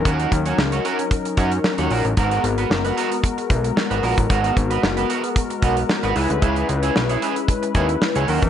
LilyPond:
<<
  \new Staff \with { instrumentName = "Clean electric guitar" } { \time 4/4 \key gis \minor \tempo 4 = 113 <cis' fis' ais'>8 r16 <cis' fis' cis''>16 r16 <cis' fis' cis''>16 <cis' fis' ais'>16 r8. <cis' fis' cis''>16 r8 <cis' fis' cis''>16 <cis' fis' ais'>16 r16 | <b fis' ais'>8 r16 <b fis' b'>16 r16 <b fis' b'>16 <b fis' ais'>16 r4. <b fis' b'>16 <b fis' ais'>16 r16 | <b fis' ais'>8 r16 <b fis' b'>16 r16 <b fis' b'>16 <b fis' ais'>16 r8. <b fis' b'>16 r8 <b fis' b'>16 <e' gis' b'>16 r16 | <e' gis' b'>8 r16 <e' gis' cis''>16 r16 <e' gis' cis''>16 <e' gis' b'>16 r8. <e' gis' cis''>16 r8 <e' gis' cis''>16 <cis' fis' ais'>16 r16 | }
  \new Staff \with { instrumentName = "Analog polysynth" } { \time 4/4 \key gis \minor <fis cis' dis' ais'>1 | <gis b fis' ais'>1~ | <gis b fis' ais'>2.~ <gis b fis' ais'>8 <gis cis' e' b'>8~ | <gis cis' e' b'>2.~ <gis cis' e' b'>8 <fis cis' dis' ais'>8 | }
  \new Staff \with { instrumentName = "Analog synth bass" } { \clef bass \time 4/4 \key gis \minor dis,8 dis,8 cis,8 r4 fis,8 r16 dis,16 ais,,16 a,,16 | gis,,8 gis,,8 fis,,8 r4 b,,8 r16 gis,,16 ais,,16 a,,16 | gis,,8 gis,,8 fis,,8 r4 b,,8 r16 gis,,16 cis,16 d,16 | cis,8 cis,8 b,,8 r4 dis,8 r16 cis,16 dis,16 e,16 | }
  \new DrumStaff \with { instrumentName = "Drums" } \drummode { \time 4/4 <hh bd>16 hh16 <hh bd>16 hh16 sn16 hh16 hh16 hh16 <hh bd>16 hh16 <hh bd>16 hh16 sn16 hh16 hho16 hh16 | <hh bd>16 hh16 hh16 hh16 sn16 hh16 hh16 hh16 <hh bd>16 hh16 <hh bd>16 hh16 sn16 hh16 hho16 <hh bd>16 | <hh bd>16 hh16 <hh bd>16 hh16 sn16 hh16 hh16 hh16 <hh bd>16 hh16 <hh bd>16 hh16 sn16 hh16 hho16 hh16 | <hh bd>16 hh16 hh16 hh16 sn16 hh16 hh16 hh16 <hh bd>16 hh16 <hh bd>16 hh16 sn16 hh16 hho16 <hh bd>16 | }
>>